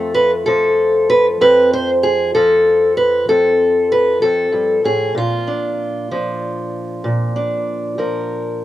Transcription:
0, 0, Header, 1, 2, 480
1, 0, Start_track
1, 0, Key_signature, -1, "major"
1, 0, Tempo, 626305
1, 1078, Time_signature, 12, 3, 24, 8
1, 6626, End_track
2, 0, Start_track
2, 0, Title_t, "Steel-string acoustic guitar"
2, 0, Program_c, 0, 25
2, 0, Note_on_c, 0, 41, 72
2, 0, Note_on_c, 0, 53, 63
2, 0, Note_on_c, 0, 57, 48
2, 0, Note_on_c, 0, 69, 87
2, 108, Note_off_c, 0, 69, 0
2, 111, Note_on_c, 0, 71, 105
2, 233, Note_off_c, 0, 71, 0
2, 352, Note_on_c, 0, 69, 80
2, 360, Note_off_c, 0, 53, 0
2, 363, Note_on_c, 0, 53, 66
2, 835, Note_off_c, 0, 69, 0
2, 840, Note_on_c, 0, 71, 108
2, 963, Note_off_c, 0, 71, 0
2, 1072, Note_off_c, 0, 41, 0
2, 1081, Note_on_c, 0, 41, 80
2, 1084, Note_on_c, 0, 71, 119
2, 1320, Note_off_c, 0, 71, 0
2, 1329, Note_on_c, 0, 72, 103
2, 1452, Note_off_c, 0, 72, 0
2, 1558, Note_on_c, 0, 68, 92
2, 1795, Note_off_c, 0, 68, 0
2, 1798, Note_on_c, 0, 69, 89
2, 1800, Note_off_c, 0, 53, 0
2, 1803, Note_on_c, 0, 53, 65
2, 2273, Note_off_c, 0, 69, 0
2, 2276, Note_on_c, 0, 71, 91
2, 2509, Note_off_c, 0, 41, 0
2, 2516, Note_off_c, 0, 71, 0
2, 2517, Note_on_c, 0, 41, 68
2, 2521, Note_on_c, 0, 69, 99
2, 2997, Note_off_c, 0, 69, 0
2, 3003, Note_on_c, 0, 71, 97
2, 3230, Note_off_c, 0, 71, 0
2, 3232, Note_off_c, 0, 41, 0
2, 3233, Note_on_c, 0, 69, 85
2, 3242, Note_on_c, 0, 41, 66
2, 3463, Note_off_c, 0, 41, 0
2, 3466, Note_on_c, 0, 43, 61
2, 3709, Note_off_c, 0, 43, 0
2, 3712, Note_on_c, 0, 45, 62
2, 3714, Note_off_c, 0, 69, 0
2, 3720, Note_on_c, 0, 68, 89
2, 3941, Note_off_c, 0, 45, 0
2, 3944, Note_on_c, 0, 46, 70
2, 3951, Note_off_c, 0, 57, 0
2, 3957, Note_off_c, 0, 68, 0
2, 3966, Note_on_c, 0, 65, 90
2, 4196, Note_on_c, 0, 62, 45
2, 4675, Note_off_c, 0, 62, 0
2, 4678, Note_off_c, 0, 53, 0
2, 4685, Note_on_c, 0, 62, 44
2, 4686, Note_on_c, 0, 53, 60
2, 5386, Note_off_c, 0, 46, 0
2, 5396, Note_on_c, 0, 46, 73
2, 5400, Note_off_c, 0, 65, 0
2, 5630, Note_off_c, 0, 62, 0
2, 5639, Note_on_c, 0, 62, 49
2, 6113, Note_off_c, 0, 53, 0
2, 6116, Note_on_c, 0, 53, 62
2, 6123, Note_on_c, 0, 70, 52
2, 6626, Note_off_c, 0, 46, 0
2, 6626, Note_off_c, 0, 53, 0
2, 6626, Note_off_c, 0, 62, 0
2, 6626, Note_off_c, 0, 70, 0
2, 6626, End_track
0, 0, End_of_file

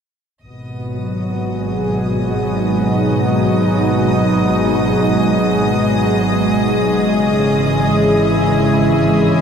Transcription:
0, 0, Header, 1, 4, 480
1, 0, Start_track
1, 0, Key_signature, 5, "minor"
1, 0, Tempo, 500000
1, 9036, End_track
2, 0, Start_track
2, 0, Title_t, "Violin section"
2, 0, Program_c, 0, 48
2, 430, Note_on_c, 0, 75, 66
2, 438, Note_on_c, 0, 87, 71
2, 9036, Note_off_c, 0, 75, 0
2, 9036, Note_off_c, 0, 87, 0
2, 9036, End_track
3, 0, Start_track
3, 0, Title_t, "Analog synth pad"
3, 0, Program_c, 1, 89
3, 419, Note_on_c, 1, 47, 80
3, 759, Note_on_c, 1, 54, 81
3, 1405, Note_on_c, 1, 56, 75
3, 1417, Note_on_c, 1, 68, 66
3, 2386, Note_on_c, 1, 63, 65
3, 6612, Note_off_c, 1, 54, 0
3, 6613, Note_off_c, 1, 47, 0
3, 6616, Note_on_c, 1, 49, 66
3, 6617, Note_off_c, 1, 63, 0
3, 6947, Note_on_c, 1, 52, 78
3, 7486, Note_on_c, 1, 64, 69
3, 9036, Note_off_c, 1, 49, 0
3, 9036, Note_off_c, 1, 52, 0
3, 9036, Note_off_c, 1, 56, 0
3, 9036, Note_off_c, 1, 64, 0
3, 9036, Note_off_c, 1, 68, 0
3, 9036, End_track
4, 0, Start_track
4, 0, Title_t, "Double bass section"
4, 0, Program_c, 2, 48
4, 413, Note_on_c, 2, 32, 59
4, 6571, Note_off_c, 2, 32, 0
4, 6614, Note_on_c, 2, 32, 66
4, 9036, Note_off_c, 2, 32, 0
4, 9036, End_track
0, 0, End_of_file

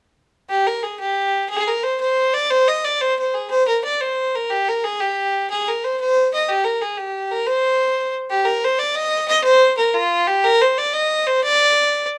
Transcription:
0, 0, Header, 1, 2, 480
1, 0, Start_track
1, 0, Key_signature, -3, "minor"
1, 0, Tempo, 331675
1, 722, Time_signature, 6, 3, 24, 8
1, 17627, End_track
2, 0, Start_track
2, 0, Title_t, "Fiddle"
2, 0, Program_c, 0, 110
2, 718, Note_on_c, 0, 67, 81
2, 968, Note_on_c, 0, 70, 74
2, 989, Note_off_c, 0, 67, 0
2, 1198, Note_on_c, 0, 68, 66
2, 1220, Note_off_c, 0, 70, 0
2, 1431, Note_off_c, 0, 68, 0
2, 1440, Note_on_c, 0, 67, 81
2, 2112, Note_off_c, 0, 67, 0
2, 2165, Note_on_c, 0, 68, 91
2, 2424, Note_on_c, 0, 70, 80
2, 2446, Note_off_c, 0, 68, 0
2, 2655, Note_on_c, 0, 72, 84
2, 2676, Note_off_c, 0, 70, 0
2, 2886, Note_off_c, 0, 72, 0
2, 2896, Note_on_c, 0, 72, 84
2, 3378, Note_on_c, 0, 74, 89
2, 3399, Note_off_c, 0, 72, 0
2, 3623, Note_on_c, 0, 72, 100
2, 3645, Note_off_c, 0, 74, 0
2, 3876, Note_on_c, 0, 75, 84
2, 3897, Note_off_c, 0, 72, 0
2, 4113, Note_on_c, 0, 74, 78
2, 4135, Note_off_c, 0, 75, 0
2, 4356, Note_on_c, 0, 72, 86
2, 4378, Note_off_c, 0, 74, 0
2, 4594, Note_off_c, 0, 72, 0
2, 4616, Note_on_c, 0, 72, 65
2, 4837, Note_on_c, 0, 68, 73
2, 4859, Note_off_c, 0, 72, 0
2, 5059, Note_off_c, 0, 68, 0
2, 5070, Note_on_c, 0, 72, 98
2, 5294, Note_off_c, 0, 72, 0
2, 5321, Note_on_c, 0, 70, 72
2, 5528, Note_off_c, 0, 70, 0
2, 5561, Note_on_c, 0, 74, 76
2, 5800, Note_on_c, 0, 72, 78
2, 5822, Note_off_c, 0, 74, 0
2, 6294, Note_on_c, 0, 70, 74
2, 6316, Note_off_c, 0, 72, 0
2, 6515, Note_on_c, 0, 67, 88
2, 6537, Note_off_c, 0, 70, 0
2, 6775, Note_on_c, 0, 70, 76
2, 6797, Note_off_c, 0, 67, 0
2, 7003, Note_on_c, 0, 68, 83
2, 7024, Note_off_c, 0, 70, 0
2, 7238, Note_on_c, 0, 67, 78
2, 7260, Note_off_c, 0, 68, 0
2, 7943, Note_off_c, 0, 67, 0
2, 7959, Note_on_c, 0, 68, 86
2, 8220, Note_on_c, 0, 70, 73
2, 8241, Note_off_c, 0, 68, 0
2, 8451, Note_on_c, 0, 72, 71
2, 8472, Note_off_c, 0, 70, 0
2, 8667, Note_off_c, 0, 72, 0
2, 8681, Note_on_c, 0, 72, 86
2, 9119, Note_off_c, 0, 72, 0
2, 9170, Note_on_c, 0, 75, 79
2, 9386, Note_on_c, 0, 67, 89
2, 9408, Note_off_c, 0, 75, 0
2, 9616, Note_on_c, 0, 70, 75
2, 9638, Note_off_c, 0, 67, 0
2, 9862, Note_on_c, 0, 68, 67
2, 9883, Note_off_c, 0, 70, 0
2, 10090, Note_on_c, 0, 67, 71
2, 10112, Note_off_c, 0, 68, 0
2, 10580, Note_on_c, 0, 70, 81
2, 10602, Note_off_c, 0, 67, 0
2, 10802, Note_on_c, 0, 72, 90
2, 10824, Note_off_c, 0, 70, 0
2, 11778, Note_off_c, 0, 72, 0
2, 12014, Note_on_c, 0, 67, 90
2, 12233, Note_on_c, 0, 70, 83
2, 12255, Note_off_c, 0, 67, 0
2, 12505, Note_on_c, 0, 72, 84
2, 12527, Note_off_c, 0, 70, 0
2, 12720, Note_on_c, 0, 74, 82
2, 12742, Note_off_c, 0, 72, 0
2, 12959, Note_on_c, 0, 75, 97
2, 12981, Note_off_c, 0, 74, 0
2, 13419, Note_off_c, 0, 75, 0
2, 13427, Note_on_c, 0, 75, 103
2, 13657, Note_off_c, 0, 75, 0
2, 13665, Note_on_c, 0, 72, 102
2, 14128, Note_off_c, 0, 72, 0
2, 14142, Note_on_c, 0, 70, 84
2, 14382, Note_on_c, 0, 65, 93
2, 14404, Note_off_c, 0, 70, 0
2, 14867, Note_on_c, 0, 67, 92
2, 14889, Note_off_c, 0, 65, 0
2, 15103, Note_on_c, 0, 70, 110
2, 15125, Note_off_c, 0, 67, 0
2, 15358, Note_on_c, 0, 72, 89
2, 15379, Note_off_c, 0, 70, 0
2, 15599, Note_on_c, 0, 74, 85
2, 15620, Note_off_c, 0, 72, 0
2, 15821, Note_on_c, 0, 75, 89
2, 15843, Note_off_c, 0, 74, 0
2, 16306, Note_on_c, 0, 72, 84
2, 16328, Note_off_c, 0, 75, 0
2, 16537, Note_off_c, 0, 72, 0
2, 16546, Note_on_c, 0, 74, 107
2, 17470, Note_off_c, 0, 74, 0
2, 17627, End_track
0, 0, End_of_file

